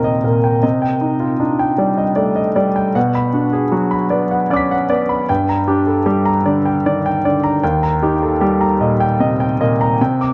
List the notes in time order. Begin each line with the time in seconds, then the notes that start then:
Already playing: D#2 A#2 C3 A#3 D#4 F4 A#4 D#5 G5
0.04 D#5
0.24 A#2 A#4
0.44 G5
0.63 C3 D#5
0.82 G5
1.01 D#4
1.20 F4
1.39 D4 D#4
1.59 G5
1.78 G3 D5
1.97 D#5
2.16 A3 D5
2.36 D#5
2.56 G3 D5
2.76 G5
2.95 B2 F#5
3.15 B5
3.33 D4 F#4
3.53 G#4
3.72 F#3 F#4
3.91 B5
4.10 B3 D5
4.31 F#5
4.50 C#4 D5 F#5 D6
4.56 B6
4.71 F#5
4.90 B3 D5
5.09 B5
5.29 G2 G5
5.49 A#5
5.68 D4 G4
5.87 A4
6.06 G3 G4
6.26 A#5
6.46 D3 D5
6.66 G5
6.86 D#3 D5
7.06 G5
7.25 D3 D5
7.44 A#5
7.63 D#2 G5
7.83 A#5
8.03 D#4 G4
8.23 A4
8.41 G3 G4
8.61 A#5
8.81 A#2 D#5
9.00 G5
9.20 C3 D#5
9.40 G5
9.60 A#2 D#5
9.81 A#5
10.01 C3 G5
10.21 D6